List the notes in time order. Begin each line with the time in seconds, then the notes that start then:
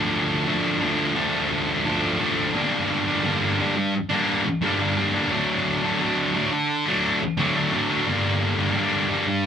Already playing: D3 F3 A3 D4
0.47 D3 F3 A3 D4
0.81 D3 F3 A3 D4
1.16 D3 F3 A3 D4
1.85 D3 F3 A3 D4
2.20 D3 F3 A3 D4
2.54 G2 D3 G3 A#3 D4
3.07 G3 A#3 D4
3.23 G2 D3 G3 A#3 D4
3.59 D3 G3 A#3 D4
3.77 muted distorted electric guitar stroke
4.10 G3 A#3 D4
4.46 muted distorted electric guitar stroke
4.61 G2 D3 G3 A#3 D4
4.79 G3 A#3 D4
4.96 D3 G3 A#3 D4
5.14 G3 A#3 D4
5.31 D3 F#3 A3 D4
5.82 F#3 A3 D4
6.00 D3 F#3 A3 D4
6.34 D3 F#3 A3 D4
6.52 muted distorted electric guitar stroke
6.86 F#3 A3 D4
7.22 muted distorted electric guitar stroke
7.37 D3 F#3 A3 D4
7.56 F#3 A3 D4
7.73 D3 F#3 A3 D4
7.90 F#3 A3 D4
8.07 G2 D3 G3 A#3 D4
8.58 G3 A#3 D4
8.75 G2 D3 G3 A#3 D4
9.09 D3 G3 A#3 D4
9.28 muted distorted electric guitar stroke